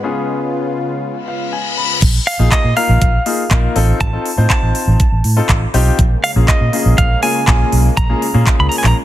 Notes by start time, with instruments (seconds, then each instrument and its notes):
Already playing: supersaw synth G#3 B4
0.03 supersaw synth C#3 F4, grand piano B3 C#4 F4 G#4
1.03 reverse cymbal
1.28 grand piano F5
1.53 grand piano G#5
1.77 grand piano B5
2.02 fingered electric bass A#1, kick, closed hi-hat, crash
2.27 clean electric guitar F5, open hi-hat
2.39 fingered electric bass A#1, grand piano A#3 D#4 F4 G#4
2.52 clean electric guitar D#5, kick, clap, closed hi-hat
2.64 fingered electric bass A#2
2.76 grand piano A#3 D#4 F4 A#4, clean electric guitar F5, open hi-hat
2.89 fingered electric bass A#1
3.01 kick, closed hi-hat
3.26 grand piano A#3 D#4 F4 G#4, open hi-hat
3.51 fingered electric bass A#1, grand piano A#3 D#4 F4 A#4, kick, clap, closed hi-hat
3.75 fingered electric bass A1, grand piano C4 D#4 F4 A4, open hi-hat
4.01 fingered electric bass A1, clean electric guitar A5, kick, closed hi-hat
4.13 grand piano C4 D#4 F4 A4
4.26 open hi-hat
4.37 fingered electric bass A2, grand piano C4 D#4 F4 C5
4.50 clean electric guitar A5, kick, clap, closed hi-hat
4.63 fingered electric bass A1
4.75 open hi-hat
4.87 fingered electric bass A1
5.00 kick, closed hi-hat
5.12 fingered electric bass A1
5.24 fingered electric bass A2, open hi-hat
5.37 grand piano C4 D#4 F4 A4
5.49 fingered electric bass A1, kick, clap, closed hi-hat
5.74 fingered electric bass B1, grand piano C4 D#4 F4 G4, open hi-hat
5.99 fingered electric bass A#1, supersaw synth C#3 G#3 A#3, kick, closed hi-hat
6.24 clean electric guitar F5, open hi-hat
6.36 fingered electric bass A#1, grand piano A#3 C#4 F4 G#4
6.48 clean electric guitar D#5, kick, clap, closed hi-hat
6.61 fingered electric bass A#2
6.73 grand piano A#3 C#4 F4 G#4, open hi-hat
6.86 fingered electric bass A#1
6.98 fingered electric bass A#1, clean electric guitar F5, kick, closed hi-hat
7.23 grand piano A#3 C#4 F4 G#4, clean electric guitar G#5, open hi-hat
7.47 fingered electric bass A#1, grand piano A#3 C#4 F4 G#4, kick, clap, closed hi-hat
7.72 fingered electric bass B1, open hi-hat
7.97 fingered electric bass A#1, clean electric guitar A#5, kick, closed hi-hat
8.09 grand piano A#3 C#4 F4 G#4
8.22 open hi-hat
8.34 fingered electric bass A#2, grand piano A#3 C#4 F4 G#4
8.47 kick, clap, closed hi-hat
8.59 fingered electric bass C#2, clean electric guitar B5
8.69 clean electric guitar A#5, open hi-hat
8.78 clean electric guitar G#5
8.84 fingered electric bass A#1, clean electric guitar A#5, clap